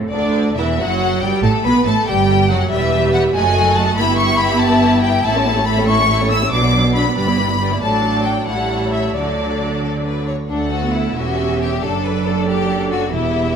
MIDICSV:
0, 0, Header, 1, 6, 480
1, 0, Start_track
1, 0, Key_signature, 2, "major"
1, 0, Tempo, 441501
1, 129, Time_signature, 6, 3, 24, 8
1, 1086, Tempo, 425230
1, 8286, Tempo, 446761
1, 11646, Tempo, 433213
1, 15029, End_track
2, 0, Start_track
2, 0, Title_t, "Violin section"
2, 0, Program_c, 0, 48
2, 130, Note_on_c, 0, 74, 77
2, 579, Note_off_c, 0, 74, 0
2, 623, Note_on_c, 0, 76, 68
2, 856, Note_off_c, 0, 76, 0
2, 867, Note_on_c, 0, 78, 78
2, 1337, Note_off_c, 0, 78, 0
2, 1344, Note_on_c, 0, 79, 73
2, 1571, Note_on_c, 0, 81, 78
2, 1575, Note_off_c, 0, 79, 0
2, 1662, Note_off_c, 0, 81, 0
2, 1813, Note_on_c, 0, 83, 78
2, 2047, Note_off_c, 0, 83, 0
2, 2055, Note_on_c, 0, 81, 77
2, 2290, Note_off_c, 0, 81, 0
2, 2299, Note_on_c, 0, 79, 78
2, 2766, Note_off_c, 0, 79, 0
2, 2774, Note_on_c, 0, 78, 80
2, 3009, Note_on_c, 0, 76, 81
2, 3011, Note_off_c, 0, 78, 0
2, 3476, Note_off_c, 0, 76, 0
2, 3491, Note_on_c, 0, 78, 76
2, 3581, Note_off_c, 0, 78, 0
2, 3727, Note_on_c, 0, 80, 89
2, 4193, Note_off_c, 0, 80, 0
2, 4202, Note_on_c, 0, 81, 85
2, 4440, Note_off_c, 0, 81, 0
2, 4441, Note_on_c, 0, 83, 93
2, 4671, Note_on_c, 0, 85, 91
2, 4673, Note_off_c, 0, 83, 0
2, 4905, Note_on_c, 0, 83, 91
2, 4908, Note_off_c, 0, 85, 0
2, 5143, Note_on_c, 0, 81, 88
2, 5150, Note_off_c, 0, 83, 0
2, 5623, Note_on_c, 0, 79, 84
2, 5630, Note_off_c, 0, 81, 0
2, 5866, Note_off_c, 0, 79, 0
2, 5878, Note_on_c, 0, 81, 86
2, 6349, Note_on_c, 0, 83, 81
2, 6356, Note_off_c, 0, 81, 0
2, 6586, Note_on_c, 0, 85, 93
2, 6592, Note_off_c, 0, 83, 0
2, 7063, Note_off_c, 0, 85, 0
2, 7075, Note_on_c, 0, 88, 81
2, 7314, Note_off_c, 0, 88, 0
2, 7314, Note_on_c, 0, 86, 81
2, 7788, Note_off_c, 0, 86, 0
2, 7799, Note_on_c, 0, 83, 79
2, 8030, Note_off_c, 0, 83, 0
2, 8043, Note_on_c, 0, 83, 84
2, 8741, Note_off_c, 0, 83, 0
2, 8754, Note_on_c, 0, 81, 75
2, 9219, Note_off_c, 0, 81, 0
2, 9223, Note_on_c, 0, 79, 63
2, 9467, Note_off_c, 0, 79, 0
2, 9470, Note_on_c, 0, 78, 61
2, 9943, Note_off_c, 0, 78, 0
2, 9951, Note_on_c, 0, 76, 56
2, 10189, Note_off_c, 0, 76, 0
2, 10208, Note_on_c, 0, 74, 60
2, 11391, Note_off_c, 0, 74, 0
2, 11646, Note_on_c, 0, 78, 45
2, 12331, Note_off_c, 0, 78, 0
2, 12370, Note_on_c, 0, 76, 51
2, 13084, Note_off_c, 0, 76, 0
2, 13106, Note_on_c, 0, 74, 51
2, 14538, Note_off_c, 0, 74, 0
2, 14546, Note_on_c, 0, 76, 53
2, 15029, Note_off_c, 0, 76, 0
2, 15029, End_track
3, 0, Start_track
3, 0, Title_t, "Violin section"
3, 0, Program_c, 1, 48
3, 131, Note_on_c, 1, 62, 61
3, 579, Note_off_c, 1, 62, 0
3, 625, Note_on_c, 1, 64, 65
3, 712, Note_off_c, 1, 64, 0
3, 844, Note_on_c, 1, 66, 68
3, 1315, Note_off_c, 1, 66, 0
3, 1334, Note_on_c, 1, 67, 67
3, 1569, Note_on_c, 1, 69, 75
3, 1570, Note_off_c, 1, 67, 0
3, 1803, Note_off_c, 1, 69, 0
3, 1822, Note_on_c, 1, 71, 73
3, 2056, Note_off_c, 1, 71, 0
3, 2069, Note_on_c, 1, 69, 69
3, 2297, Note_on_c, 1, 67, 74
3, 2301, Note_off_c, 1, 69, 0
3, 2774, Note_off_c, 1, 67, 0
3, 2783, Note_on_c, 1, 66, 66
3, 2873, Note_off_c, 1, 66, 0
3, 3045, Note_on_c, 1, 76, 53
3, 3051, Note_on_c, 1, 71, 55
3, 3696, Note_off_c, 1, 76, 0
3, 3699, Note_off_c, 1, 71, 0
3, 3743, Note_on_c, 1, 69, 63
3, 3743, Note_on_c, 1, 75, 61
3, 4448, Note_off_c, 1, 69, 0
3, 4448, Note_off_c, 1, 75, 0
3, 4455, Note_on_c, 1, 67, 64
3, 4464, Note_on_c, 1, 76, 62
3, 5862, Note_off_c, 1, 76, 0
3, 5875, Note_on_c, 1, 76, 53
3, 5880, Note_on_c, 1, 69, 53
3, 5886, Note_off_c, 1, 67, 0
3, 5989, Note_off_c, 1, 76, 0
3, 5991, Note_off_c, 1, 69, 0
3, 5996, Note_on_c, 1, 73, 52
3, 6006, Note_on_c, 1, 67, 53
3, 6117, Note_off_c, 1, 73, 0
3, 6117, Note_on_c, 1, 76, 49
3, 6121, Note_on_c, 1, 69, 55
3, 6122, Note_off_c, 1, 67, 0
3, 6226, Note_on_c, 1, 67, 52
3, 6229, Note_on_c, 1, 73, 52
3, 6237, Note_off_c, 1, 76, 0
3, 6239, Note_off_c, 1, 69, 0
3, 6351, Note_off_c, 1, 67, 0
3, 6352, Note_off_c, 1, 73, 0
3, 6354, Note_on_c, 1, 69, 52
3, 6355, Note_on_c, 1, 76, 49
3, 6466, Note_off_c, 1, 69, 0
3, 6466, Note_off_c, 1, 76, 0
3, 6475, Note_on_c, 1, 73, 46
3, 6481, Note_on_c, 1, 67, 46
3, 6578, Note_on_c, 1, 69, 56
3, 6581, Note_on_c, 1, 76, 56
3, 6595, Note_off_c, 1, 73, 0
3, 6598, Note_off_c, 1, 67, 0
3, 6707, Note_off_c, 1, 69, 0
3, 6708, Note_off_c, 1, 76, 0
3, 6722, Note_on_c, 1, 67, 48
3, 6723, Note_on_c, 1, 73, 49
3, 6839, Note_off_c, 1, 67, 0
3, 6840, Note_off_c, 1, 73, 0
3, 6843, Note_on_c, 1, 76, 55
3, 6845, Note_on_c, 1, 69, 53
3, 6952, Note_off_c, 1, 76, 0
3, 6953, Note_off_c, 1, 69, 0
3, 6954, Note_on_c, 1, 73, 44
3, 6961, Note_on_c, 1, 67, 48
3, 7077, Note_off_c, 1, 73, 0
3, 7077, Note_on_c, 1, 76, 48
3, 7078, Note_on_c, 1, 69, 49
3, 7080, Note_off_c, 1, 67, 0
3, 7181, Note_on_c, 1, 67, 47
3, 7186, Note_on_c, 1, 73, 47
3, 7198, Note_off_c, 1, 76, 0
3, 7199, Note_off_c, 1, 69, 0
3, 7288, Note_on_c, 1, 62, 49
3, 7291, Note_on_c, 1, 71, 50
3, 7311, Note_off_c, 1, 67, 0
3, 7314, Note_off_c, 1, 73, 0
3, 7415, Note_off_c, 1, 62, 0
3, 7417, Note_off_c, 1, 71, 0
3, 7423, Note_on_c, 1, 66, 49
3, 7432, Note_on_c, 1, 74, 50
3, 7537, Note_on_c, 1, 71, 49
3, 7545, Note_on_c, 1, 62, 49
3, 7552, Note_off_c, 1, 66, 0
3, 7557, Note_off_c, 1, 74, 0
3, 7656, Note_on_c, 1, 66, 46
3, 7658, Note_on_c, 1, 74, 46
3, 7669, Note_off_c, 1, 71, 0
3, 7673, Note_off_c, 1, 62, 0
3, 7785, Note_on_c, 1, 71, 45
3, 7788, Note_off_c, 1, 66, 0
3, 7790, Note_off_c, 1, 74, 0
3, 7794, Note_on_c, 1, 62, 48
3, 7894, Note_on_c, 1, 66, 45
3, 7900, Note_on_c, 1, 74, 45
3, 7905, Note_off_c, 1, 71, 0
3, 7909, Note_off_c, 1, 62, 0
3, 8022, Note_on_c, 1, 71, 49
3, 8028, Note_on_c, 1, 67, 49
3, 8030, Note_off_c, 1, 66, 0
3, 8032, Note_off_c, 1, 74, 0
3, 8146, Note_off_c, 1, 71, 0
3, 8148, Note_off_c, 1, 67, 0
3, 8151, Note_on_c, 1, 64, 45
3, 8156, Note_on_c, 1, 74, 45
3, 8273, Note_on_c, 1, 67, 52
3, 8274, Note_on_c, 1, 71, 47
3, 8281, Note_off_c, 1, 64, 0
3, 8283, Note_off_c, 1, 74, 0
3, 8393, Note_on_c, 1, 74, 40
3, 8398, Note_off_c, 1, 67, 0
3, 8398, Note_off_c, 1, 71, 0
3, 8398, Note_on_c, 1, 64, 43
3, 8511, Note_on_c, 1, 67, 45
3, 8516, Note_off_c, 1, 74, 0
3, 8516, Note_on_c, 1, 71, 48
3, 8518, Note_off_c, 1, 64, 0
3, 8624, Note_off_c, 1, 67, 0
3, 8627, Note_off_c, 1, 71, 0
3, 8636, Note_on_c, 1, 74, 44
3, 8639, Note_on_c, 1, 64, 45
3, 8754, Note_off_c, 1, 74, 0
3, 8755, Note_off_c, 1, 64, 0
3, 8765, Note_on_c, 1, 74, 46
3, 8767, Note_on_c, 1, 69, 52
3, 9431, Note_off_c, 1, 74, 0
3, 9432, Note_off_c, 1, 69, 0
3, 9468, Note_on_c, 1, 73, 47
3, 9471, Note_on_c, 1, 69, 48
3, 10176, Note_off_c, 1, 69, 0
3, 10183, Note_on_c, 1, 74, 39
3, 10189, Note_on_c, 1, 69, 38
3, 10194, Note_off_c, 1, 73, 0
3, 10856, Note_off_c, 1, 69, 0
3, 10867, Note_off_c, 1, 74, 0
3, 10922, Note_on_c, 1, 69, 50
3, 11008, Note_off_c, 1, 69, 0
3, 11141, Note_on_c, 1, 71, 49
3, 11391, Note_on_c, 1, 73, 43
3, 11392, Note_off_c, 1, 71, 0
3, 11477, Note_off_c, 1, 73, 0
3, 11628, Note_on_c, 1, 62, 59
3, 11861, Note_off_c, 1, 62, 0
3, 11877, Note_on_c, 1, 66, 59
3, 12112, Note_on_c, 1, 64, 60
3, 12121, Note_off_c, 1, 66, 0
3, 12366, Note_off_c, 1, 64, 0
3, 12370, Note_on_c, 1, 66, 68
3, 12858, Note_off_c, 1, 66, 0
3, 12866, Note_on_c, 1, 67, 63
3, 13099, Note_off_c, 1, 67, 0
3, 13099, Note_on_c, 1, 69, 67
3, 13341, Note_off_c, 1, 69, 0
3, 13346, Note_on_c, 1, 71, 66
3, 13584, Note_off_c, 1, 71, 0
3, 13589, Note_on_c, 1, 69, 64
3, 13814, Note_on_c, 1, 67, 73
3, 13825, Note_off_c, 1, 69, 0
3, 14284, Note_off_c, 1, 67, 0
3, 14305, Note_on_c, 1, 66, 63
3, 14530, Note_on_c, 1, 64, 66
3, 14535, Note_off_c, 1, 66, 0
3, 14995, Note_off_c, 1, 64, 0
3, 15029, End_track
4, 0, Start_track
4, 0, Title_t, "Viola section"
4, 0, Program_c, 2, 48
4, 127, Note_on_c, 2, 50, 66
4, 577, Note_off_c, 2, 50, 0
4, 619, Note_on_c, 2, 52, 63
4, 849, Note_off_c, 2, 52, 0
4, 862, Note_on_c, 2, 54, 69
4, 1325, Note_off_c, 2, 54, 0
4, 1335, Note_on_c, 2, 55, 70
4, 1566, Note_on_c, 2, 57, 77
4, 1571, Note_off_c, 2, 55, 0
4, 1805, Note_on_c, 2, 59, 72
4, 1806, Note_off_c, 2, 57, 0
4, 2043, Note_off_c, 2, 59, 0
4, 2050, Note_on_c, 2, 57, 69
4, 2287, Note_off_c, 2, 57, 0
4, 2293, Note_on_c, 2, 55, 68
4, 2768, Note_on_c, 2, 54, 70
4, 2772, Note_off_c, 2, 55, 0
4, 2998, Note_on_c, 2, 55, 63
4, 3001, Note_on_c, 2, 67, 62
4, 3003, Note_off_c, 2, 54, 0
4, 3673, Note_off_c, 2, 55, 0
4, 3674, Note_off_c, 2, 67, 0
4, 3728, Note_on_c, 2, 66, 67
4, 3729, Note_on_c, 2, 57, 67
4, 4441, Note_off_c, 2, 57, 0
4, 4441, Note_off_c, 2, 66, 0
4, 4442, Note_on_c, 2, 59, 66
4, 4442, Note_on_c, 2, 64, 64
4, 5864, Note_off_c, 2, 64, 0
4, 5876, Note_on_c, 2, 57, 59
4, 5878, Note_on_c, 2, 64, 58
4, 5880, Note_off_c, 2, 59, 0
4, 5989, Note_off_c, 2, 57, 0
4, 5990, Note_off_c, 2, 64, 0
4, 5992, Note_on_c, 2, 61, 54
4, 6000, Note_on_c, 2, 69, 53
4, 6115, Note_off_c, 2, 61, 0
4, 6119, Note_off_c, 2, 69, 0
4, 6126, Note_on_c, 2, 57, 54
4, 6126, Note_on_c, 2, 64, 53
4, 6229, Note_on_c, 2, 61, 53
4, 6229, Note_on_c, 2, 69, 50
4, 6241, Note_off_c, 2, 57, 0
4, 6242, Note_off_c, 2, 64, 0
4, 6350, Note_on_c, 2, 57, 50
4, 6351, Note_on_c, 2, 64, 51
4, 6352, Note_off_c, 2, 61, 0
4, 6352, Note_off_c, 2, 69, 0
4, 6464, Note_off_c, 2, 57, 0
4, 6464, Note_off_c, 2, 64, 0
4, 6466, Note_on_c, 2, 69, 52
4, 6469, Note_on_c, 2, 61, 48
4, 6590, Note_on_c, 2, 57, 55
4, 6591, Note_off_c, 2, 69, 0
4, 6592, Note_off_c, 2, 61, 0
4, 6596, Note_on_c, 2, 64, 53
4, 6711, Note_on_c, 2, 61, 51
4, 6713, Note_off_c, 2, 57, 0
4, 6716, Note_off_c, 2, 64, 0
4, 6717, Note_on_c, 2, 69, 49
4, 6827, Note_on_c, 2, 64, 49
4, 6833, Note_on_c, 2, 57, 46
4, 6834, Note_off_c, 2, 61, 0
4, 6837, Note_off_c, 2, 69, 0
4, 6944, Note_off_c, 2, 64, 0
4, 6947, Note_off_c, 2, 57, 0
4, 6962, Note_on_c, 2, 69, 46
4, 6963, Note_on_c, 2, 61, 51
4, 7069, Note_on_c, 2, 64, 51
4, 7071, Note_on_c, 2, 57, 50
4, 7081, Note_off_c, 2, 61, 0
4, 7081, Note_off_c, 2, 69, 0
4, 7195, Note_off_c, 2, 64, 0
4, 7196, Note_off_c, 2, 57, 0
4, 7196, Note_on_c, 2, 61, 49
4, 7201, Note_on_c, 2, 69, 52
4, 7309, Note_on_c, 2, 54, 53
4, 7309, Note_on_c, 2, 62, 54
4, 7318, Note_off_c, 2, 61, 0
4, 7321, Note_off_c, 2, 69, 0
4, 7426, Note_off_c, 2, 62, 0
4, 7427, Note_off_c, 2, 54, 0
4, 7431, Note_on_c, 2, 59, 49
4, 7434, Note_off_c, 2, 59, 0
4, 7434, Note_on_c, 2, 59, 51
4, 7557, Note_off_c, 2, 59, 0
4, 7561, Note_on_c, 2, 62, 47
4, 7562, Note_on_c, 2, 54, 49
4, 7678, Note_on_c, 2, 59, 47
4, 7679, Note_off_c, 2, 59, 0
4, 7679, Note_on_c, 2, 59, 47
4, 7681, Note_off_c, 2, 62, 0
4, 7682, Note_off_c, 2, 54, 0
4, 7796, Note_on_c, 2, 62, 45
4, 7798, Note_on_c, 2, 54, 46
4, 7800, Note_off_c, 2, 59, 0
4, 7910, Note_off_c, 2, 62, 0
4, 7912, Note_off_c, 2, 54, 0
4, 7925, Note_on_c, 2, 59, 44
4, 7928, Note_off_c, 2, 59, 0
4, 7928, Note_on_c, 2, 59, 47
4, 8042, Note_on_c, 2, 62, 47
4, 8046, Note_off_c, 2, 59, 0
4, 8046, Note_on_c, 2, 55, 49
4, 8156, Note_off_c, 2, 62, 0
4, 8158, Note_off_c, 2, 55, 0
4, 8163, Note_on_c, 2, 64, 45
4, 8166, Note_on_c, 2, 59, 45
4, 8286, Note_off_c, 2, 64, 0
4, 8288, Note_off_c, 2, 59, 0
4, 8288, Note_on_c, 2, 55, 44
4, 8291, Note_on_c, 2, 62, 46
4, 8405, Note_off_c, 2, 55, 0
4, 8406, Note_off_c, 2, 62, 0
4, 8410, Note_on_c, 2, 64, 44
4, 8414, Note_on_c, 2, 59, 45
4, 8517, Note_on_c, 2, 55, 49
4, 8519, Note_on_c, 2, 62, 47
4, 8524, Note_off_c, 2, 64, 0
4, 8526, Note_off_c, 2, 59, 0
4, 8628, Note_off_c, 2, 55, 0
4, 8629, Note_off_c, 2, 62, 0
4, 8630, Note_on_c, 2, 59, 44
4, 8633, Note_on_c, 2, 64, 44
4, 8749, Note_on_c, 2, 54, 54
4, 8751, Note_off_c, 2, 59, 0
4, 8752, Note_on_c, 2, 62, 54
4, 8753, Note_off_c, 2, 64, 0
4, 9423, Note_off_c, 2, 54, 0
4, 9424, Note_off_c, 2, 62, 0
4, 9470, Note_on_c, 2, 55, 46
4, 9471, Note_on_c, 2, 64, 47
4, 10195, Note_off_c, 2, 55, 0
4, 10196, Note_off_c, 2, 64, 0
4, 10201, Note_on_c, 2, 62, 46
4, 10205, Note_on_c, 2, 54, 44
4, 11406, Note_off_c, 2, 62, 0
4, 11408, Note_off_c, 2, 54, 0
4, 11644, Note_on_c, 2, 69, 48
4, 11647, Note_on_c, 2, 57, 46
4, 11983, Note_off_c, 2, 57, 0
4, 12010, Note_on_c, 2, 59, 43
4, 12330, Note_off_c, 2, 69, 0
4, 12376, Note_off_c, 2, 59, 0
4, 12382, Note_on_c, 2, 61, 47
4, 12382, Note_on_c, 2, 67, 49
4, 13104, Note_off_c, 2, 61, 0
4, 13104, Note_off_c, 2, 67, 0
4, 13104, Note_on_c, 2, 69, 51
4, 13106, Note_on_c, 2, 62, 51
4, 14508, Note_off_c, 2, 69, 0
4, 14510, Note_off_c, 2, 62, 0
4, 14538, Note_on_c, 2, 67, 52
4, 14541, Note_on_c, 2, 59, 51
4, 15029, Note_off_c, 2, 59, 0
4, 15029, Note_off_c, 2, 67, 0
4, 15029, End_track
5, 0, Start_track
5, 0, Title_t, "Cello section"
5, 0, Program_c, 3, 48
5, 0, Note_on_c, 3, 45, 53
5, 126, Note_off_c, 3, 45, 0
5, 142, Note_on_c, 3, 38, 68
5, 585, Note_off_c, 3, 38, 0
5, 613, Note_on_c, 3, 40, 65
5, 846, Note_off_c, 3, 40, 0
5, 853, Note_on_c, 3, 42, 70
5, 1329, Note_off_c, 3, 42, 0
5, 1340, Note_on_c, 3, 43, 70
5, 1431, Note_off_c, 3, 43, 0
5, 1572, Note_on_c, 3, 45, 79
5, 1663, Note_off_c, 3, 45, 0
5, 1820, Note_on_c, 3, 47, 68
5, 1910, Note_off_c, 3, 47, 0
5, 2059, Note_on_c, 3, 45, 69
5, 2149, Note_off_c, 3, 45, 0
5, 2287, Note_on_c, 3, 43, 73
5, 2760, Note_off_c, 3, 43, 0
5, 2779, Note_on_c, 3, 42, 70
5, 3014, Note_off_c, 3, 42, 0
5, 3020, Note_on_c, 3, 40, 64
5, 3684, Note_off_c, 3, 40, 0
5, 3747, Note_on_c, 3, 42, 66
5, 4436, Note_off_c, 3, 42, 0
5, 4456, Note_on_c, 3, 43, 69
5, 5858, Note_off_c, 3, 43, 0
5, 5877, Note_on_c, 3, 45, 71
5, 7275, Note_off_c, 3, 45, 0
5, 7320, Note_on_c, 3, 47, 62
5, 8029, Note_off_c, 3, 47, 0
5, 8054, Note_on_c, 3, 43, 63
5, 8746, Note_off_c, 3, 43, 0
5, 8760, Note_on_c, 3, 45, 56
5, 9429, Note_off_c, 3, 45, 0
5, 9477, Note_on_c, 3, 45, 50
5, 10184, Note_off_c, 3, 45, 0
5, 10201, Note_on_c, 3, 50, 47
5, 11407, Note_off_c, 3, 50, 0
5, 11646, Note_on_c, 3, 38, 50
5, 12331, Note_off_c, 3, 38, 0
5, 12379, Note_on_c, 3, 40, 53
5, 13088, Note_off_c, 3, 40, 0
5, 13110, Note_on_c, 3, 42, 54
5, 14537, Note_on_c, 3, 40, 55
5, 14540, Note_off_c, 3, 42, 0
5, 15029, Note_off_c, 3, 40, 0
5, 15029, End_track
6, 0, Start_track
6, 0, Title_t, "Double bass section"
6, 0, Program_c, 4, 48
6, 130, Note_on_c, 4, 38, 66
6, 578, Note_off_c, 4, 38, 0
6, 605, Note_on_c, 4, 28, 62
6, 842, Note_off_c, 4, 28, 0
6, 851, Note_on_c, 4, 30, 69
6, 1321, Note_on_c, 4, 31, 59
6, 1329, Note_off_c, 4, 30, 0
6, 1412, Note_off_c, 4, 31, 0
6, 1564, Note_on_c, 4, 33, 74
6, 1654, Note_off_c, 4, 33, 0
6, 1810, Note_on_c, 4, 35, 67
6, 1900, Note_off_c, 4, 35, 0
6, 2047, Note_on_c, 4, 33, 66
6, 2137, Note_off_c, 4, 33, 0
6, 2285, Note_on_c, 4, 31, 74
6, 2759, Note_off_c, 4, 31, 0
6, 2772, Note_on_c, 4, 30, 64
6, 3010, Note_off_c, 4, 30, 0
6, 3021, Note_on_c, 4, 28, 64
6, 3684, Note_off_c, 4, 28, 0
6, 3743, Note_on_c, 4, 30, 66
6, 4434, Note_off_c, 4, 30, 0
6, 4457, Note_on_c, 4, 31, 66
6, 5859, Note_off_c, 4, 31, 0
6, 5888, Note_on_c, 4, 33, 66
6, 7280, Note_off_c, 4, 33, 0
6, 7321, Note_on_c, 4, 35, 65
6, 8029, Note_off_c, 4, 35, 0
6, 8048, Note_on_c, 4, 31, 57
6, 8743, Note_off_c, 4, 31, 0
6, 8762, Note_on_c, 4, 33, 57
6, 9429, Note_off_c, 4, 33, 0
6, 9469, Note_on_c, 4, 33, 49
6, 10180, Note_off_c, 4, 33, 0
6, 10193, Note_on_c, 4, 38, 47
6, 11402, Note_off_c, 4, 38, 0
6, 11643, Note_on_c, 4, 38, 52
6, 12329, Note_off_c, 4, 38, 0
6, 12372, Note_on_c, 4, 28, 52
6, 13085, Note_off_c, 4, 28, 0
6, 13096, Note_on_c, 4, 30, 53
6, 14533, Note_off_c, 4, 30, 0
6, 14544, Note_on_c, 4, 28, 54
6, 15029, Note_off_c, 4, 28, 0
6, 15029, End_track
0, 0, End_of_file